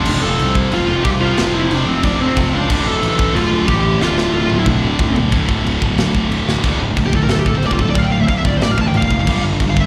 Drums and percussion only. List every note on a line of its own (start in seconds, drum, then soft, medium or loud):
0.05 china medium
0.05 crash loud
0.39 china medium
0.55 kick medium
0.72 china medium
1.05 kick medium
1.05 china medium
1.37 snare loud
1.37 china medium
1.71 china medium
2.03 kick medium
2.03 china medium
2.37 kick medium
2.37 china medium
2.70 kick loud
2.70 crash loud
2.70 china medium
3.03 china medium
3.19 kick medium
3.36 china medium
3.68 kick medium
3.68 china medium
4.01 snare medium
4.18 snare medium
4.50 high tom medium
4.66 kick medium
4.66 mid tom loud
4.99 kick medium
4.99 floor tom loud
5.16 floor tom loud
5.32 kick loud
5.32 crash medium
5.49 kick medium
5.67 crash medium
5.82 kick medium
5.98 snare loud
5.98 crash medium
6.15 kick medium
6.32 crash medium
6.49 snare medium
6.63 kick loud
6.63 china medium
6.97 kick medium
6.97 china medium
7.13 kick medium
7.29 snare loud
7.29 china medium
7.46 kick medium
7.62 china medium
7.71 kick medium
7.79 kick medium
7.95 kick loud
7.95 china medium
8.28 kick medium
8.28 china medium
8.45 kick medium
8.61 snare loud
8.61 china medium
8.78 kick medium
8.94 china medium
9.02 kick medium
9.11 kick medium
9.27 kick loud
9.27 crash loud
9.27 china medium
9.60 kick medium
9.60 china medium
9.77 kick medium